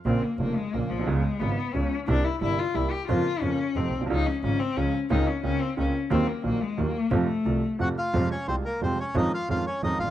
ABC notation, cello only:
X:1
M:3/4
L:1/16
Q:1/4=178
K:Bbm
V:1 name="Cello"
C2 B,2 B,2 A,2 B,2 F,2 | A,4 _C4 D3 z | =D2 =E2 E2 F2 E2 =G2 | F4 D4 C3 z |
E2 D2 D2 C2 D2 z2 | E2 D2 D2 C2 D2 z2 | C2 B,2 B,2 A,2 B,4 | =A,8- A,2 z2 |
[K:Fm] z12 | z12 |]